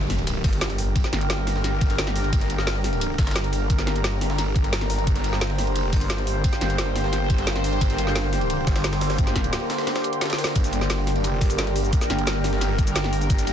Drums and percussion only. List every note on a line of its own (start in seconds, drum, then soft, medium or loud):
0.01 snare medium
0.10 snare soft
0.10 open hi-hat medium
0.10 ride medium
0.18 ride soft
0.27 closed hi-hat loud
0.27 ride medium
0.44 kick loud
0.44 snare soft
0.44 closed hi-hat medium
0.44 open hi-hat medium
0.53 closed hi-hat soft
0.53 ride soft
0.61 snare loud
0.61 closed hi-hat loud
0.61 ride medium
0.70 snare soft
0.70 closed hi-hat soft
0.78 open hi-hat medium
0.78 ride medium
0.96 kick loud
0.96 closed hi-hat medium
0.96 ride medium
1.04 snare soft
1.04 closed hi-hat soft
1.04 ride soft
1.13 snare medium
1.13 closed hi-hat medium
1.13 ride medium
1.21 closed hi-hat soft
1.30 snare loud
1.30 closed hi-hat medium
1.30 ride medium
1.47 snare soft
1.47 open hi-hat medium
1.47 ride medium
1.56 snare medium
1.64 snare soft
1.64 closed hi-hat medium
1.64 ride medium
1.81 kick loud
1.81 closed hi-hat medium
1.81 ride medium
1.90 snare soft
1.90 closed hi-hat soft
1.98 snare loud
1.98 closed hi-hat loud
1.98 ride medium
2.07 snare soft
2.07 closed hi-hat soft
2.16 snare soft
2.16 open hi-hat medium
2.16 ride medium
2.24 ride soft
2.33 kick loud
2.33 closed hi-hat medium
2.33 ride medium
2.41 snare soft
2.41 closed hi-hat soft
2.50 closed hi-hat medium
2.50 ride medium
2.58 snare soft
2.67 snare loud
2.67 closed hi-hat medium
2.67 ride medium
2.76 snare medium
2.84 snare soft
2.84 open hi-hat medium
2.84 ride medium
2.93 ride soft
3.01 closed hi-hat medium
3.01 ride medium
3.18 kick loud
3.18 snare loud
3.18 closed hi-hat medium
3.18 ride medium
3.27 snare medium
3.27 closed hi-hat soft
3.27 ride medium
3.31 snare medium
3.31 ride medium
3.36 snare loud
3.36 closed hi-hat medium
3.44 snare soft
3.44 closed hi-hat soft
3.53 open hi-hat medium
3.53 ride medium
3.70 kick loud
3.70 closed hi-hat medium
3.70 ride medium
3.79 snare soft
3.79 closed hi-hat soft
3.79 ride soft
3.87 snare medium
3.87 closed hi-hat medium
3.87 ride medium
3.96 closed hi-hat soft
4.04 snare loud
4.04 closed hi-hat medium
4.04 ride medium
4.21 snare soft
4.21 open hi-hat medium
4.21 ride medium
4.30 snare medium
4.38 snare soft
4.38 closed hi-hat medium
4.38 ride medium
4.56 kick loud
4.56 closed hi-hat medium
4.56 ride medium
4.64 snare soft
4.64 closed hi-hat soft
4.73 snare loud
4.73 closed hi-hat medium
4.73 ride medium
4.81 snare soft
4.81 closed hi-hat soft
4.90 snare soft
4.90 open hi-hat medium
4.90 ride medium
4.99 ride soft
5.07 kick loud
5.07 closed hi-hat medium
5.07 ride medium
5.16 snare soft
5.16 closed hi-hat soft
5.24 closed hi-hat medium
5.24 ride medium
5.33 snare soft
5.41 snare loud
5.41 closed hi-hat medium
5.41 ride medium
5.50 snare medium
5.58 snare soft
5.58 open hi-hat medium
5.58 ride medium
5.67 ride soft
5.76 closed hi-hat medium
5.76 ride medium
5.93 kick loud
5.93 snare soft
5.93 closed hi-hat medium
5.93 open hi-hat medium
6.01 closed hi-hat soft
6.01 ride soft
6.10 snare loud
6.10 closed hi-hat medium
6.10 ride medium
6.18 snare soft
6.18 closed hi-hat soft
6.27 open hi-hat medium
6.27 ride medium
6.44 kick loud
6.44 closed hi-hat medium
6.44 ride medium
6.53 snare soft
6.53 closed hi-hat soft
6.53 ride soft
6.61 snare medium
6.61 closed hi-hat medium
6.61 ride medium
6.70 closed hi-hat soft
6.78 snare loud
6.78 closed hi-hat medium
6.78 ride medium
6.96 snare soft
6.96 open hi-hat medium
6.96 ride medium
7.04 snare medium
7.13 snare soft
7.13 closed hi-hat medium
7.13 ride medium
7.30 kick loud
7.30 closed hi-hat medium
7.30 ride medium
7.38 snare soft
7.38 closed hi-hat soft
7.47 snare loud
7.47 closed hi-hat medium
7.47 ride medium
7.56 snare soft
7.56 closed hi-hat soft
7.64 snare soft
7.64 open hi-hat medium
7.64 ride medium
7.73 ride soft
7.81 kick loud
7.81 closed hi-hat loud
7.81 ride medium
7.90 snare soft
7.90 closed hi-hat soft
7.98 closed hi-hat medium
7.98 ride medium
8.07 snare soft
8.16 snare loud
8.16 closed hi-hat medium
8.16 ride medium
8.24 snare medium
8.33 snare soft
8.33 open hi-hat medium
8.33 ride medium
8.41 ride soft
8.50 closed hi-hat loud
8.50 ride medium
8.67 kick loud
8.67 snare loud
8.67 closed hi-hat medium
8.67 ride medium
8.76 snare loud
8.76 closed hi-hat soft
8.76 ride medium
8.84 snare loud
8.84 closed hi-hat loud
8.84 ride medium
8.93 snare loud
8.93 closed hi-hat soft
8.93 ride medium
9.01 snare loud
9.01 open hi-hat medium
9.01 ride medium
9.10 snare loud
9.10 ride medium
9.18 kick loud
9.18 closed hi-hat loud
9.18 ride medium
9.27 snare soft
9.27 closed hi-hat soft
9.27 ride soft
9.36 kick medium
9.36 snare medium
9.36 closed hi-hat medium
9.36 ride medium
9.44 closed hi-hat soft
9.53 snare loud
9.53 closed hi-hat loud
9.53 ride medium
9.70 snare loud
9.70 snare soft
9.70 open hi-hat medium
9.70 ride medium
9.78 snare loud
9.78 ride medium
9.87 snare loud
9.87 snare soft
9.87 closed hi-hat loud
9.87 ride medium
9.96 snare loud
9.96 ride medium
10.04 closed hi-hat medium
10.13 closed hi-hat soft
10.21 snare medium
10.21 closed hi-hat loud
10.21 ride medium
10.26 snare medium
10.26 ride medium
10.30 snare loud
10.30 closed hi-hat soft
10.30 ride medium
10.33 snare medium
10.38 snare loud
10.38 open hi-hat medium
10.38 ride medium
10.44 snare loud
10.47 snare loud
10.47 ride medium
10.56 kick loud
10.56 closed hi-hat medium
10.56 ride medium
10.56 cabasa soft
10.64 snare soft
10.64 closed hi-hat soft
10.64 cabasa medium
10.73 closed hi-hat medium
10.73 ride medium
10.73 cabasa soft
10.81 snare soft
10.90 snare loud
10.90 closed hi-hat loud
10.90 ride medium
10.90 cabasa soft
10.98 snare medium
11.07 snare soft
11.07 open hi-hat medium
11.07 ride medium
11.16 ride soft
11.24 closed hi-hat loud
11.24 ride medium
11.24 cabasa soft
11.41 kick loud
11.41 snare soft
11.41 closed hi-hat medium
11.41 open hi-hat medium
11.41 cabasa soft
11.50 closed hi-hat soft
11.50 ride soft
11.50 cabasa medium
11.58 snare loud
11.58 closed hi-hat loud
11.58 ride medium
11.58 cabasa medium
11.67 snare soft
11.67 closed hi-hat soft
11.76 open hi-hat medium
11.76 ride medium
11.84 cabasa soft
11.93 kick loud
11.93 closed hi-hat medium
11.93 ride medium
11.93 cabasa soft
12.01 snare soft
12.01 closed hi-hat soft
12.01 ride soft
12.01 cabasa medium
12.10 snare medium
12.10 closed hi-hat medium
12.10 ride medium
12.10 cabasa soft
12.19 closed hi-hat soft
12.27 snare loud
12.27 closed hi-hat medium
12.27 ride medium
12.27 cabasa soft
12.44 snare soft
12.44 open hi-hat medium
12.44 ride medium
12.44 cabasa soft
12.53 snare medium
12.61 snare soft
12.61 closed hi-hat medium
12.61 ride medium
12.61 cabasa soft
12.78 kick loud
12.78 closed hi-hat medium
12.78 ride medium
12.78 cabasa soft
12.87 snare soft
12.87 closed hi-hat soft
12.87 cabasa medium
12.96 snare loud
12.96 closed hi-hat loud
12.96 ride medium
12.96 cabasa soft
13.04 snare soft
13.04 snare medium
13.04 closed hi-hat soft
13.13 snare soft
13.13 open hi-hat medium
13.13 ride medium
13.21 ride soft
13.21 cabasa soft
13.30 kick loud
13.30 closed hi-hat medium
13.30 ride medium
13.30 cabasa soft
13.39 snare soft
13.39 closed hi-hat soft
13.39 cabasa medium
13.47 closed hi-hat medium
13.47 ride medium
13.47 cabasa soft